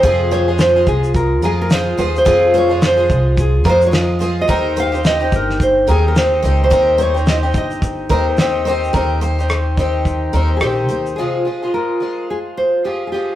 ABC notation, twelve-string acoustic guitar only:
X:1
M:4/4
L:1/16
Q:"Swing 16ths" 1/4=108
K:Fm
V:1 name="Twelve-string acoustic guitar"
[F,,C,F,A,FA]3 [F,A,FA]2 [F,A,FA]4- [F,A,FA] [F,A,FA]2 [F,A,FA]2 [F,A,FA]2 | [F,,C,F,A,FA]3 [F,A,FA]2 [F,A,FA]4- [F,A,FA] [F,A,FA]2 [F,A,FA]2 [F,A,FA]2 | [E,CEG]3 [CEG]2 [CEG]4- [CEG] [E,CEG]2 [E,CEG]2 [E,CEG]2 | [E,CEG]3 [CEG]2 [CEG]4- [CEG] [E,CEG]2 [E,CEG]2 [E,CEG]2 |
[E,CEG]3 [CEG]3 [E,CEG]4 [E,CEG]2 [E,CEG]4 | [F,,C,F,A,FA]2 [F,A,FA] [F,A,FA]3 [F,A,FA]6 [F,A,FA]2 [F,A,FA]2 |]